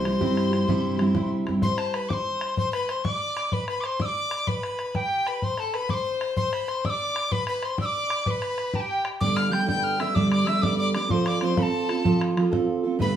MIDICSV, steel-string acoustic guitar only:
0, 0, Header, 1, 2, 480
1, 0, Start_track
1, 0, Tempo, 315789
1, 2479, Time_signature, 12, 3, 24, 8
1, 20008, End_track
2, 0, Start_track
2, 0, Title_t, "Steel-string acoustic guitar"
2, 0, Program_c, 0, 25
2, 63, Note_on_c, 0, 55, 57
2, 85, Note_on_c, 0, 60, 58
2, 93, Note_on_c, 0, 64, 57
2, 113, Note_on_c, 0, 67, 65
2, 295, Note_off_c, 0, 67, 0
2, 307, Note_off_c, 0, 64, 0
2, 310, Note_off_c, 0, 60, 0
2, 311, Note_off_c, 0, 55, 0
2, 313, Note_on_c, 0, 67, 75
2, 325, Note_on_c, 0, 64, 69
2, 328, Note_on_c, 0, 60, 71
2, 334, Note_on_c, 0, 55, 68
2, 344, Note_on_c, 0, 48, 62
2, 785, Note_off_c, 0, 67, 0
2, 791, Note_on_c, 0, 67, 53
2, 812, Note_off_c, 0, 48, 0
2, 818, Note_off_c, 0, 64, 0
2, 824, Note_on_c, 0, 64, 47
2, 827, Note_off_c, 0, 60, 0
2, 833, Note_on_c, 0, 60, 46
2, 1029, Note_on_c, 0, 48, 85
2, 1032, Note_off_c, 0, 60, 0
2, 1032, Note_off_c, 0, 64, 0
2, 1035, Note_off_c, 0, 55, 0
2, 1035, Note_off_c, 0, 67, 0
2, 1041, Note_on_c, 0, 55, 95
2, 1050, Note_on_c, 0, 60, 87
2, 1050, Note_on_c, 0, 64, 95
2, 1059, Note_on_c, 0, 67, 97
2, 1509, Note_off_c, 0, 55, 0
2, 1514, Note_off_c, 0, 48, 0
2, 1515, Note_on_c, 0, 55, 61
2, 1528, Note_off_c, 0, 60, 0
2, 1534, Note_on_c, 0, 60, 67
2, 1547, Note_off_c, 0, 64, 0
2, 1553, Note_on_c, 0, 64, 69
2, 1565, Note_off_c, 0, 67, 0
2, 1571, Note_on_c, 0, 67, 69
2, 1726, Note_off_c, 0, 67, 0
2, 1733, Note_off_c, 0, 64, 0
2, 1740, Note_off_c, 0, 55, 0
2, 1743, Note_off_c, 0, 60, 0
2, 1744, Note_on_c, 0, 67, 74
2, 1751, Note_on_c, 0, 64, 74
2, 1758, Note_on_c, 0, 55, 62
2, 1761, Note_on_c, 0, 60, 71
2, 1770, Note_on_c, 0, 48, 61
2, 2228, Note_off_c, 0, 67, 0
2, 2234, Note_on_c, 0, 67, 57
2, 2245, Note_off_c, 0, 48, 0
2, 2254, Note_off_c, 0, 64, 0
2, 2260, Note_on_c, 0, 64, 54
2, 2264, Note_off_c, 0, 60, 0
2, 2270, Note_on_c, 0, 60, 42
2, 2477, Note_off_c, 0, 67, 0
2, 2490, Note_off_c, 0, 64, 0
2, 2495, Note_off_c, 0, 60, 0
2, 3255, Note_off_c, 0, 55, 0
2, 13996, Note_on_c, 0, 43, 70
2, 14003, Note_on_c, 0, 50, 77
2, 14008, Note_on_c, 0, 55, 80
2, 14012, Note_on_c, 0, 59, 71
2, 14013, Note_on_c, 0, 62, 73
2, 14023, Note_on_c, 0, 69, 78
2, 14439, Note_off_c, 0, 55, 0
2, 14454, Note_off_c, 0, 59, 0
2, 14457, Note_on_c, 0, 55, 58
2, 14471, Note_off_c, 0, 62, 0
2, 14472, Note_on_c, 0, 59, 56
2, 14478, Note_off_c, 0, 43, 0
2, 14482, Note_off_c, 0, 50, 0
2, 14489, Note_off_c, 0, 69, 0
2, 14489, Note_on_c, 0, 62, 68
2, 14495, Note_on_c, 0, 69, 60
2, 14679, Note_off_c, 0, 69, 0
2, 14695, Note_off_c, 0, 62, 0
2, 14698, Note_on_c, 0, 69, 71
2, 14701, Note_off_c, 0, 59, 0
2, 14702, Note_off_c, 0, 55, 0
2, 14713, Note_on_c, 0, 62, 61
2, 14720, Note_on_c, 0, 55, 62
2, 14720, Note_on_c, 0, 59, 63
2, 14725, Note_on_c, 0, 43, 55
2, 14734, Note_on_c, 0, 50, 62
2, 15163, Note_off_c, 0, 69, 0
2, 15169, Note_on_c, 0, 69, 51
2, 15176, Note_off_c, 0, 62, 0
2, 15184, Note_off_c, 0, 59, 0
2, 15194, Note_on_c, 0, 62, 44
2, 15200, Note_off_c, 0, 55, 0
2, 15202, Note_off_c, 0, 43, 0
2, 15203, Note_on_c, 0, 59, 41
2, 15207, Note_off_c, 0, 50, 0
2, 15225, Note_on_c, 0, 55, 42
2, 15420, Note_off_c, 0, 55, 0
2, 15422, Note_off_c, 0, 59, 0
2, 15424, Note_off_c, 0, 69, 0
2, 15424, Note_on_c, 0, 43, 75
2, 15429, Note_off_c, 0, 62, 0
2, 15433, Note_on_c, 0, 50, 74
2, 15438, Note_on_c, 0, 55, 82
2, 15440, Note_on_c, 0, 59, 74
2, 15447, Note_on_c, 0, 62, 78
2, 15459, Note_on_c, 0, 69, 77
2, 15881, Note_off_c, 0, 55, 0
2, 15899, Note_on_c, 0, 55, 59
2, 15905, Note_off_c, 0, 59, 0
2, 15912, Note_off_c, 0, 43, 0
2, 15916, Note_off_c, 0, 50, 0
2, 15918, Note_off_c, 0, 62, 0
2, 15923, Note_on_c, 0, 59, 63
2, 15936, Note_on_c, 0, 62, 60
2, 15939, Note_off_c, 0, 69, 0
2, 15945, Note_on_c, 0, 69, 59
2, 16130, Note_off_c, 0, 69, 0
2, 16134, Note_off_c, 0, 62, 0
2, 16143, Note_off_c, 0, 59, 0
2, 16149, Note_off_c, 0, 55, 0
2, 16149, Note_on_c, 0, 69, 63
2, 16152, Note_on_c, 0, 62, 64
2, 16161, Note_on_c, 0, 59, 62
2, 16168, Note_on_c, 0, 55, 57
2, 16169, Note_on_c, 0, 50, 55
2, 16175, Note_on_c, 0, 43, 53
2, 16619, Note_off_c, 0, 69, 0
2, 16625, Note_off_c, 0, 62, 0
2, 16625, Note_on_c, 0, 69, 50
2, 16640, Note_off_c, 0, 59, 0
2, 16643, Note_off_c, 0, 55, 0
2, 16643, Note_on_c, 0, 62, 48
2, 16644, Note_off_c, 0, 50, 0
2, 16647, Note_off_c, 0, 43, 0
2, 16658, Note_on_c, 0, 59, 47
2, 16666, Note_on_c, 0, 55, 38
2, 16849, Note_off_c, 0, 55, 0
2, 16854, Note_off_c, 0, 59, 0
2, 16855, Note_on_c, 0, 53, 71
2, 16860, Note_on_c, 0, 60, 72
2, 16863, Note_off_c, 0, 69, 0
2, 16867, Note_off_c, 0, 62, 0
2, 16873, Note_on_c, 0, 65, 76
2, 16882, Note_on_c, 0, 69, 80
2, 17319, Note_off_c, 0, 53, 0
2, 17337, Note_off_c, 0, 60, 0
2, 17337, Note_on_c, 0, 53, 61
2, 17345, Note_off_c, 0, 65, 0
2, 17356, Note_on_c, 0, 60, 63
2, 17363, Note_on_c, 0, 65, 59
2, 17365, Note_off_c, 0, 69, 0
2, 17371, Note_on_c, 0, 69, 63
2, 17555, Note_off_c, 0, 69, 0
2, 17566, Note_off_c, 0, 65, 0
2, 17573, Note_on_c, 0, 69, 66
2, 17579, Note_off_c, 0, 60, 0
2, 17584, Note_on_c, 0, 65, 59
2, 17588, Note_off_c, 0, 53, 0
2, 17597, Note_on_c, 0, 60, 62
2, 17603, Note_on_c, 0, 53, 55
2, 18065, Note_off_c, 0, 69, 0
2, 18071, Note_off_c, 0, 65, 0
2, 18071, Note_on_c, 0, 69, 51
2, 18078, Note_off_c, 0, 60, 0
2, 18081, Note_off_c, 0, 53, 0
2, 18091, Note_on_c, 0, 65, 44
2, 18117, Note_on_c, 0, 60, 45
2, 18286, Note_off_c, 0, 60, 0
2, 18300, Note_on_c, 0, 53, 82
2, 18303, Note_off_c, 0, 65, 0
2, 18304, Note_on_c, 0, 60, 84
2, 18310, Note_off_c, 0, 69, 0
2, 18321, Note_on_c, 0, 65, 87
2, 18328, Note_on_c, 0, 69, 95
2, 18775, Note_off_c, 0, 53, 0
2, 18785, Note_off_c, 0, 60, 0
2, 18793, Note_on_c, 0, 53, 65
2, 18800, Note_off_c, 0, 65, 0
2, 18803, Note_on_c, 0, 60, 67
2, 18815, Note_on_c, 0, 65, 76
2, 18828, Note_off_c, 0, 69, 0
2, 18834, Note_on_c, 0, 69, 67
2, 19005, Note_off_c, 0, 69, 0
2, 19012, Note_off_c, 0, 65, 0
2, 19024, Note_on_c, 0, 69, 73
2, 19029, Note_off_c, 0, 60, 0
2, 19030, Note_off_c, 0, 53, 0
2, 19030, Note_on_c, 0, 65, 68
2, 19047, Note_on_c, 0, 60, 62
2, 19048, Note_on_c, 0, 53, 64
2, 19501, Note_off_c, 0, 69, 0
2, 19508, Note_on_c, 0, 69, 54
2, 19510, Note_off_c, 0, 65, 0
2, 19523, Note_off_c, 0, 53, 0
2, 19523, Note_off_c, 0, 60, 0
2, 19529, Note_on_c, 0, 65, 52
2, 19555, Note_on_c, 0, 60, 47
2, 19740, Note_on_c, 0, 50, 71
2, 19741, Note_on_c, 0, 43, 76
2, 19750, Note_on_c, 0, 57, 76
2, 19753, Note_off_c, 0, 65, 0
2, 19753, Note_off_c, 0, 69, 0
2, 19755, Note_off_c, 0, 60, 0
2, 19759, Note_on_c, 0, 62, 82
2, 19761, Note_on_c, 0, 59, 80
2, 19772, Note_on_c, 0, 67, 80
2, 20008, Note_off_c, 0, 43, 0
2, 20008, Note_off_c, 0, 50, 0
2, 20008, Note_off_c, 0, 57, 0
2, 20008, Note_off_c, 0, 59, 0
2, 20008, Note_off_c, 0, 62, 0
2, 20008, Note_off_c, 0, 67, 0
2, 20008, End_track
0, 0, End_of_file